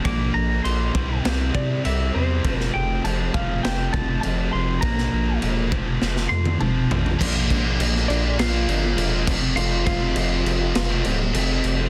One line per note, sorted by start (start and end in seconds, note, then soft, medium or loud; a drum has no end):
0.05 0.31 A#1 medium
0.05 0.63 A#2 medium
0.05 0.64 F3 loud
0.05 0.64 A#3 loud
0.05 0.65 D4 loud
0.05 0.34 D6 loud
0.05 kick loud
0.05 crash medium
0.34 0.61 A#1 medium
0.34 0.64 A#5 loud
0.64 0.91 A#1 medium
0.64 0.93 A#2 medium
0.64 0.93 F3 medium
0.64 0.93 A#3 medium
0.64 0.94 D4 medium
0.64 1.21 C6 medium
0.64 crash medium
0.94 1.21 C2 medium
0.94 1.23 C3 loud
0.94 1.23 G3 loud
0.94 1.24 C4 loud
0.94 1.25 E4 medium
0.94 kick loud
1.24 1.51 C2 loud
1.24 1.83 C3 loud
1.24 1.83 G3 loud
1.24 1.83 C4 medium
1.24 1.84 E4 loud
1.24 snare loud
1.24 crash medium
1.55 1.81 C3 medium
1.55 1.83 D5 medium
1.55 kick medium
1.84 2.11 C2 medium
1.84 2.14 C3 medium
1.84 2.14 G3 medium
1.84 2.15 C4 medium
1.84 2.15 E4 medium
1.84 2.13 E5 medium
1.84 crash medium
2.14 2.41 E2 medium
2.14 2.43 C3 medium
2.14 2.43 G3 medium
2.14 2.44 C4 medium
2.14 2.44 E4 loud
2.14 2.57 C5 medium
2.44 2.70 F1 loud
2.44 3.03 F2 medium
2.44 3.04 C3 medium
2.44 3.05 F3 loud
2.44 3.05 A3 loud
2.44 3.05 C4 loud
2.44 kick loud
2.44 crash medium
2.57 2.70 A#4 medium
2.57 snare soft
2.74 3.01 F1 medium
2.74 3.02 G5 medium
3.04 3.31 F1 medium
3.04 3.33 F2 medium
3.04 3.34 C3 medium
3.04 3.35 F3 medium
3.04 3.35 A3 loud
3.04 3.35 C4 medium
3.04 3.32 A5 medium
3.04 crash medium
3.34 3.60 F1 medium
3.34 3.63 F2 medium
3.34 3.64 C3 medium
3.34 3.65 F3 medium
3.34 3.65 A3 medium
3.34 3.65 C4 medium
3.34 3.62 F5 medium
3.34 kick medium
3.63 3.91 F1 medium
3.63 4.23 F2 loud
3.63 4.24 C3 loud
3.63 4.25 F3 medium
3.63 4.25 A3 medium
3.63 4.25 C4 loud
3.63 3.94 G5 medium
3.63 snare loud
3.63 crash medium
3.93 4.20 F1 medium
3.93 4.20 A5 loud
3.93 kick medium
4.21 4.50 F1 medium
4.21 4.52 F2 medium
4.21 4.53 C3 medium
4.21 4.52 A5 loud
4.21 crash medium
4.25 4.54 F3 medium
4.25 4.54 A3 medium
4.25 4.54 C4 medium
4.53 4.80 F1 medium
4.53 4.81 F2 medium
4.53 4.82 C3 medium
4.53 4.83 F3 medium
4.53 4.82 A3 medium
4.53 4.82 C4 loud
4.53 4.80 C6 loud
4.81 5.09 A#1 loud
4.81 5.41 A#2 loud
4.81 5.42 F3 loud
4.81 5.42 A#3 loud
4.81 5.38 A#5 loud
4.81 kick loud
4.81 crash medium
4.85 5.42 D4 loud
4.98 snare soft
5.13 5.39 A#1 medium
5.42 5.74 E1 medium
5.42 5.70 A#2 medium
5.42 5.71 F3 medium
5.42 5.71 A#3 medium
5.42 5.71 D4 loud
5.42 crash medium
5.72 5.98 F1 medium
5.72 6.00 F2 medium
5.72 6.00 C3 medium
5.72 6.00 F3 loud
5.72 6.01 A3 loud
5.72 6.02 C4 loud
5.72 kick loud
6.01 6.28 F1 medium
6.01 6.60 F2 medium
6.01 6.60 C3 medium
6.01 6.61 F3 medium
6.01 6.61 A3 loud
6.01 6.62 C4 loud
6.01 snare medium
6.16 snare medium
6.29 6.57 F2 medium
6.29 6.58 C6 loud
6.46 high tom medium
6.60 6.87 F1 medium
6.60 6.89 F2 medium
6.60 6.90 C3 medium
6.60 6.91 F3 medium
6.60 6.91 A3 loud
6.60 6.91 C4 medium
6.60 7.16 A5 medium
6.60 mid tom medium
6.91 7.17 A1 medium
6.91 7.19 F2 medium
6.91 7.19 C3 medium
6.91 7.19 F3 medium
6.91 7.20 A3 medium
6.91 7.20 C4 medium
6.91 floor tom loud
7.06 floor tom medium
7.21 7.49 A#1 loud
7.21 7.80 A#2 loud
7.21 7.81 F3 loud
7.21 7.68 A#3 loud
7.21 7.67 D4 loud
7.21 7.66 F4 loud
7.21 kick loud
7.21 crash loud
7.21 crash medium
7.50 7.78 A#1 medium
7.50 kick medium
7.50 crash medium
7.66 7.79 F3 medium
7.66 7.81 A#3 medium
7.66 7.82 D4 medium
7.66 7.83 F4 medium
7.79 8.07 A#1 medium
7.79 8.40 A#2 loud
7.79 8.10 F3 medium
7.79 8.10 A#3 loud
7.79 8.11 D4 loud
7.79 crash loud
7.84 8.12 F4 loud
7.96 snare soft
8.08 8.37 A#1 medium
8.08 8.53 A#2 medium
8.08 8.26 F3 medium
8.08 8.24 A#3 medium
8.08 8.37 D4 medium
8.08 8.25 D4 medium
8.08 8.36 D5 medium
8.08 crash medium
8.13 8.25 F4 medium
8.24 muted overdriven electric guitar stroke medium
8.24 muted distorted electric guitar stroke soft
8.38 8.67 A#1 loud
8.38 9.24 F4 medium
8.38 9.24 F5 loud
8.38 snare loud
8.38 crash loud
8.54 8.68 F3 medium
8.54 8.68 A#3 medium
8.54 8.69 D4 medium
8.54 8.70 F4 medium
8.68 8.96 G1 medium
8.68 8.95 A#2 medium
8.68 8.84 F3 medium
8.68 8.83 A#3 medium
8.68 8.83 D4 medium
8.68 8.83 F4 medium
8.68 crash medium
8.83 muted distorted electric guitar stroke medium
8.83 muted overdriven electric guitar stroke medium
8.97 9.26 E1 loud
8.97 9.25 A#2 loud
8.97 9.29 F3 medium
8.97 9.26 A#3 loud
8.97 9.27 D4 loud
8.97 9.31 F4 loud
8.97 crash medium
9.11 9.28 F3 medium
9.11 9.26 A#3 medium
9.11 9.25 D4 medium
9.27 9.55 F1 loud
9.27 9.57 F2 medium
9.27 9.58 C3 loud
9.27 9.45 F3 loud
9.27 9.43 A3 loud
9.27 9.42 C4 loud
9.27 kick loud
9.27 crash loud
9.31 9.42 F4 loud
9.42 9.59 F3 medium
9.42 9.58 A3 medium
9.42 9.59 C4 medium
9.42 9.60 F4 medium
9.56 9.85 F1 medium
9.56 10.15 F2 medium
9.56 10.16 C3 loud
9.56 10.04 F3 loud
9.56 10.03 A3 loud
9.56 9.84 F4 medium
9.56 9.84 F5 loud
9.56 crash medium
9.60 10.02 C4 loud
9.60 10.02 F4 loud
9.86 10.15 F1 loud
9.86 11.01 F4 medium
9.86 11.01 F5 loud
9.86 kick medium
9.86 crash medium
10.03 10.17 F3 medium
10.03 10.17 A3 medium
10.03 10.17 C4 medium
10.03 10.19 F4 medium
10.16 10.44 F1 medium
10.16 10.75 F2 medium
10.16 10.76 C3 loud
10.16 10.46 F3 loud
10.16 10.47 A3 loud
10.16 10.48 C4 loud
10.16 10.49 F4 loud
10.16 crash medium
10.45 10.73 F1 loud
10.45 10.60 C3 medium
10.45 10.62 F3 medium
10.45 10.62 A3 medium
10.45 10.62 C4 medium
10.45 crash medium
10.50 10.61 F4 medium
10.60 muted overdriven electric guitar stroke medium
10.60 muted distorted electric guitar stroke medium
10.75 11.03 F1 loud
10.75 snare loud
10.75 crash medium
10.91 11.05 F3 medium
10.91 11.06 A3 medium
10.91 11.06 C4 medium
10.91 11.08 F4 medium
11.03 11.33 D1 medium
11.03 11.18 C3 medium
11.03 11.22 F3 medium
11.03 11.21 A3 medium
11.03 crash medium
11.07 11.21 C4 medium
11.07 11.20 F4 medium
11.19 muted overdriven electric guitar stroke medium
11.19 muted distorted electric guitar stroke medium
11.34 11.62 F1 loud
11.34 11.89 F2 medium
11.34 11.89 C3 loud
11.34 11.81 F3 medium
11.34 11.80 A3 loud
11.34 11.79 C4 loud
11.34 crash medium
11.39 11.78 F4 loud
11.47 11.79 F3 medium
11.47 11.78 A3 medium
11.47 11.76 C4 medium
11.64 11.89 F1 loud
11.64 crash medium
11.79 11.89 F3 medium
11.79 11.89 A3 medium
11.79 11.89 C4 medium
11.79 11.89 F4 medium